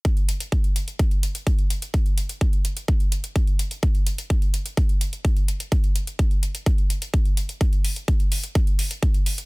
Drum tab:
HH |xxxxxxxxxxxxxxxx|xxxxxxxxxxxxxxxx|xxxxxxxxxxxxxxxx|xxxxxxxxxxxxxxxx|
BD |o---o---o---o---|o---o---o---o---|o---o---o---o---|o---o---o---o---|

HH |xxoxxxoxxxoxxxox|
BD |o---o---o---o---|